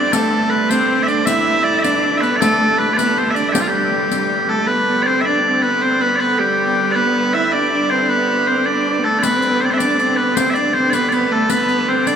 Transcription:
0.00 0.13 G2 medium
0.00 0.13 D3 medium
0.00 0.15 D4 medium
0.00 0.12 D5 medium
0.12 4.68 G2 medium
0.12 4.68 D3 medium
0.12 0.72 A3 medium
0.12 0.49 A4 loud
0.12 riq medium
0.49 0.69 B4 medium
0.69 1.09 C4 medium
0.69 1.03 C5 loud
0.69 riq soft
1.03 1.07 E5 medium
1.07 1.29 D4 medium
1.07 1.26 D5 medium
1.07 riq soft
1.26 1.85 E4 medium
1.26 1.64 E5 loud
1.26 riq medium
1.64 1.79 D5 loud
1.79 2.18 D5 medium
1.79 1.83 E5 medium
1.84 2.24 D4 medium
1.84 riq soft
2.18 2.36 B4 medium
2.18 2.21 E5 medium
2.22 2.40 B3 medium
2.22 riq soft
2.36 2.41 D5 loud
2.40 2.58 A3 medium
2.40 2.78 A4 loud
2.40 riq medium
2.60 2.99 A3 medium
2.78 2.93 B4 medium
2.93 3.36 B3 medium
2.93 3.18 B4 medium
2.93 2.97 D5 medium
2.99 riq soft
3.18 3.31 C5 medium
3.31 3.35 E5 medium
3.35 3.55 D4 medium
3.35 3.49 D5 medium
3.35 riq soft
3.49 3.61 G4 medium
3.49 3.53 E5 medium
3.53 3.67 G3 medium
3.53 riq medium
3.61 3.68 F4 medium
3.67 4.45 G3 medium
3.67 4.49 G4 medium
4.11 riq soft
4.49 4.69 A3 medium
4.49 4.67 A4 medium
4.67 9.23 G2 medium
4.67 9.23 D3 medium
4.67 4.87 B3 medium
4.67 5.02 B4 loud
4.87 5.08 B3 medium
5.02 5.25 C4 medium
5.02 5.07 D5 medium
5.07 5.21 C5 medium
5.21 5.25 E5 medium
5.25 5.43 D4 medium
5.25 5.62 D5 medium
5.44 5.64 C4 medium
5.62 5.83 B3 medium
5.62 5.82 B4 medium
5.81 6.02 C4 medium
5.81 6.01 C5 loud
6.01 6.18 B3 medium
6.01 6.16 B4 medium
6.16 6.40 B3 medium
6.16 6.39 B4 medium
6.16 6.19 D5 medium
6.39 6.97 G3 medium
6.39 6.91 G4 medium
6.91 7.33 B4 medium
6.91 6.95 D5 medium
6.95 7.36 B3 medium
7.33 7.50 E4 medium
7.33 7.52 E5 medium
7.50 7.72 D4 medium
7.50 7.55 E4 medium
7.50 7.90 D5 medium
7.72 7.92 D4 medium
7.90 8.09 C4 medium
7.90 8.09 C5 medium
8.08 8.48 B3 medium
8.08 8.47 B4 medium
8.47 8.67 C4 medium
8.47 8.66 C5 medium
8.65 9.00 D4 medium
8.65 9.04 D5 medium
8.99 9.05 B3 medium
9.03 9.24 A3 medium
9.03 9.19 A4 medium
9.19 9.37 B3 medium
9.19 9.60 B4 loud
9.19 9.23 D5 loud
9.23 12.16 G2 medium
9.23 12.16 D3 medium
9.23 riq medium
9.36 9.51 C4 medium
9.42 riq soft
9.50 9.63 B3 medium
9.60 9.70 C4 medium
9.60 9.65 C5 medium
9.65 9.70 D5 medium
9.70 9.81 C4 medium
9.70 9.72 C5 medium
9.70 9.78 E5 medium
9.78 10.01 D4 medium
9.78 10.17 D5 medium
9.78 riq soft
9.99 10.19 C4 medium
9.99 riq soft
10.17 10.39 B3 medium
10.17 10.35 B4 medium
10.35 10.58 C4 medium
10.35 10.50 C5 medium
10.35 riq medium
10.50 10.74 D5 medium
10.50 10.54 E5 medium
10.56 10.75 D4 medium
10.56 riq soft
10.74 10.95 C4 medium
10.74 10.90 C5 medium
10.90 11.11 B3 medium
10.90 11.09 B4 medium
10.90 10.93 D5 medium
10.90 riq soft
11.09 11.33 B3 medium
11.09 11.13 D5 medium
11.09 riq soft
11.13 11.32 B4 medium
11.31 11.52 A3 medium
11.31 11.50 A4 medium
11.50 11.89 B3 medium
11.50 11.88 B4 loud
11.50 riq medium
11.69 riq soft
11.88 12.08 C4 medium
11.88 12.07 C5 medium
12.07 12.16 D4 medium
12.07 12.16 D5 medium
12.07 riq soft

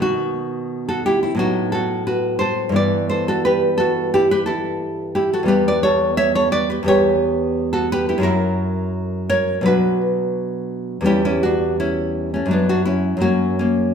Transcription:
0.00 1.33 B2 medium
0.00 1.34 D#3 soft
0.00 1.35 B3 soft
0.00 0.85 D#4 medium
0.00 0.85 F#4 medium
0.89 1.05 F#4 medium
0.89 1.05 A4 medium
1.06 1.22 E4 medium
1.06 1.22 G4 medium
1.23 1.40 C4 soft
1.23 1.39 E4 medium
1.35 2.69 A2 medium
1.35 2.70 F#3 soft
1.35 2.70 B3 medium
1.39 1.72 D#4 medium
1.39 1.72 F#4 medium
1.72 2.06 F#4 medium
1.72 2.06 A4 medium
2.07 2.39 F#4 medium
2.07 2.38 B4 medium
2.39 2.73 A4 medium
2.39 2.73 C5 medium
2.69 5.43 G2 medium
2.69 5.45 E3 soft
2.74 5.45 B3 soft
2.74 3.07 B4 medium
2.74 3.08 D5 medium
3.10 3.26 A4 medium
3.10 3.26 C5 medium
3.28 3.44 F#4 medium
3.28 3.44 A4 medium
3.45 3.77 G4 medium
3.45 3.77 B4 medium
3.78 4.11 F#4 medium
3.78 4.11 A4 loud
4.14 4.30 E4 medium
4.14 4.31 G4 loud
4.31 4.47 G4 medium
4.31 4.46 B4 loud
4.46 5.12 E4 medium
4.46 5.13 A4 medium
5.15 5.32 E4 medium
5.15 5.33 G4 medium
5.33 5.49 F#4 medium
5.33 5.48 A4 medium
5.43 6.79 E2 medium
5.43 6.81 G3 soft
5.43 6.81 B3 soft
5.48 5.66 G4 medium
5.48 5.66 B4 medium
5.68 5.84 B4 medium
5.68 5.83 D5 medium
5.83 6.16 A4 medium
5.83 6.17 C#5 medium
6.17 6.34 C#5 medium
6.17 6.35 E5 loud
6.35 6.52 A4 medium
6.35 6.52 C#5 medium
6.52 6.69 B4 medium
6.52 6.70 D5 loud
6.70 6.84 G4 medium
6.70 6.87 B4 medium
6.83 8.17 E2 medium
6.83 8.21 G3 medium
6.83 8.19 B3 medium
6.88 7.71 G4 medium
6.88 7.71 C#5 loud
7.73 7.90 F#4 medium
7.73 7.91 A4 medium
7.92 8.08 G4 medium
7.92 8.09 B4 loud
8.09 8.20 E4 medium
8.09 8.23 G4 medium
8.18 9.59 F#2 medium
8.18 9.60 F#3 medium
8.18 9.61 E4 medium
8.23 9.27 F#4 medium
8.23 9.26 A#4 medium
9.30 9.64 A#4 medium
9.30 9.65 C#5 loud
9.61 11.00 B2 medium
9.61 11.01 F#3 medium
9.65 11.02 D4 medium
9.65 10.01 F#4 medium
9.65 10.00 B4 medium
11.01 12.43 E2 medium
11.01 12.43 G3 medium
11.01 11.24 C#4 medium
11.06 11.23 E4 medium
11.06 11.24 G4 loud
11.25 11.41 C#4 medium
11.25 11.43 E4 medium
11.43 11.77 D4 medium
11.43 11.77 F#4 medium
11.80 12.29 C#4 medium
11.80 12.30 E4 medium
12.34 12.51 A3 medium
12.34 12.51 C#4 medium
12.46 13.16 F#2 medium
12.46 13.17 F#3 soft
12.51 12.69 B3 medium
12.51 12.69 D4 medium
12.69 12.86 D4 medium
12.69 12.85 F#4 medium
12.85 13.21 C#4 medium
12.85 13.21 E4 medium
13.17 13.94 F#2 medium
13.17 13.94 F#3 soft
13.17 13.59 A#3 soft
13.21 13.58 C#4 medium
13.21 13.59 F#4 medium
13.59 13.94 A#3 medium
13.59 13.94 C#4 medium

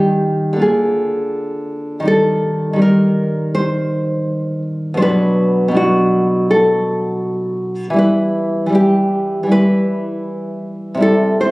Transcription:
0.00 0.55 D#3 soft
0.00 0.56 G3 soft
0.00 0.58 D#4 soft
0.00 0.59 G4 medium
0.53 1.99 D3 soft
0.53 2.01 A#3 soft
0.59 2.02 F4 soft
0.59 2.04 G#4 medium
2.00 2.72 D#3 medium
2.00 2.75 G3 soft
2.05 2.77 D#4 soft
2.05 2.78 A4 medium
2.73 4.96 D#3 medium
2.73 4.97 G3 soft
2.79 4.98 D#4 soft
2.79 3.52 A#4 medium
3.55 4.62 C5 medium
4.94 5.67 B2 medium
4.94 5.70 F#3 soft
4.94 5.02 C5 medium
5.00 5.73 D4 soft
5.00 5.73 B4 medium
5.68 7.90 B2 medium
5.68 7.93 F#3 soft
5.74 7.94 D4 soft
5.74 6.47 F#4 medium
6.51 7.95 A4 medium
7.90 8.65 E3 medium
7.90 8.68 G3 soft
7.96 8.71 E4 soft
7.96 8.71 B4 medium
8.66 9.42 E3 soft
8.66 9.45 G3 soft
8.73 9.48 E4 soft
8.73 9.48 G4 medium
9.43 10.95 E3 soft
9.43 10.96 G3 soft
9.49 10.98 E4 soft
9.49 10.99 B4 medium
10.95 11.51 C3 medium
10.95 11.51 G3 soft
11.00 11.51 E4 soft
11.00 11.39 A4 medium
11.41 11.51 C5 medium

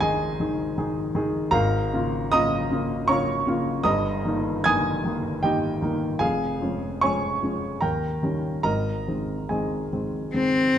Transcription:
0.00 1.52 G#1 medium
0.00 1.52 G#2 medium
0.00 0.02 D#3 medium
0.00 0.36 D#3 medium
0.00 0.02 D#4 soft
0.00 0.36 D#4 medium
0.00 0.02 G#4 soft
0.00 0.39 G#4 medium
0.00 1.56 C5 medium
0.00 0.74 D#5 medium
0.00 1.56 G#5 loud
0.00 1.56 C6 loud
0.40 0.74 D#3 medium
0.40 0.74 D#4 soft
0.40 0.75 G#4 soft
0.78 1.12 D#3 soft
0.78 1.12 D#4 medium
0.78 1.12 G#4 medium
1.15 1.50 D#3 medium
1.15 1.50 D#4 medium
1.15 1.50 G#4 medium
1.51 1.91 G#1 medium
1.51 1.92 G#2 medium
1.51 2.29 A#4 medium
1.51 2.29 F5 medium
1.51 2.31 A#5 loud
1.94 2.30 C#3 soft
1.94 2.30 A#3 soft
1.94 2.30 F4 medium
2.32 2.68 C#3 medium
2.32 2.68 A#3 medium
2.32 2.68 F4 medium
2.32 3.05 D#5 medium
2.32 3.05 A#5 medium
2.32 3.08 D#6 loud
2.71 3.05 C#3 soft
2.71 3.06 A#3 medium
2.71 3.06 F4 medium
3.08 3.43 C#3 medium
3.08 3.43 A#3 medium
3.08 3.44 F4 medium
3.08 3.81 C#5 medium
3.08 3.81 A#5 medium
3.08 3.85 C#6 loud
3.47 3.82 C#3 medium
3.47 3.82 A#3 medium
3.47 3.82 F4 medium
3.83 4.24 G1 medium
3.83 4.24 G2 medium
3.83 4.63 D#5 medium
3.83 4.63 A#5 medium
3.83 4.64 D#6 loud
4.25 4.63 D#3 soft
4.25 4.63 A#3 soft
4.25 4.63 D#4 medium
4.64 5.02 D#3 medium
4.64 5.02 A#3 medium
4.64 5.02 D#4 medium
4.64 5.40 G#5 medium
4.64 5.40 D#6 loud
4.64 5.43 G#6 loud
5.05 5.40 D#3 soft
5.05 5.40 A#3 soft
5.05 5.40 D#4 medium
5.43 5.79 D#3 soft
5.43 5.79 A#3 medium
5.43 5.79 D#4 medium
5.43 6.17 G4 medium
5.43 6.17 D#5 medium
5.43 6.20 G5 medium
5.82 6.17 D#3 medium
5.82 6.18 A#3 medium
5.82 6.18 D#4 medium
6.19 6.60 F1 medium
6.19 6.60 F2 medium
6.19 6.98 G#4 medium
6.19 6.98 F5 medium
6.19 7.01 G#5 medium
6.61 6.98 F3 soft
6.61 6.99 G#3 soft
6.61 6.99 C#4 medium
7.01 7.39 F3 soft
7.01 7.39 G#3 soft
7.01 7.39 C#4 soft
7.01 7.79 C#5 medium
7.01 7.79 G#5 medium
7.01 7.82 C#6 loud
7.42 7.78 F3 soft
7.42 7.79 G#3 soft
7.42 7.79 C#4 soft
7.81 8.22 D#2 medium
7.81 8.61 A#4 medium
7.81 8.61 G5 medium
7.81 8.62 A#5 medium
8.23 8.61 D#3 soft
8.23 8.62 G3 soft
8.23 8.62 C#4 soft
8.63 9.06 G#1 soft
8.63 9.07 G#2 medium
8.63 9.46 A#4 medium
8.63 9.46 D#5 medium
8.63 9.49 A#5 medium
9.08 9.46 D#3 soft
9.08 9.47 G#3 soft
9.08 9.47 C4 soft
9.49 9.89 D#3 soft
9.49 9.89 G#3 soft
9.49 9.89 C4 soft
9.49 10.30 G#4 soft
9.49 10.30 D#5 soft
9.49 10.34 G#5 medium
9.93 10.31 D#3 soft
9.93 10.31 G#3 soft
9.93 10.31 C4 soft
10.34 10.72 D#3 soft
10.34 10.73 G#3 soft
10.34 10.78 C4 medium
10.34 10.73 C4 soft

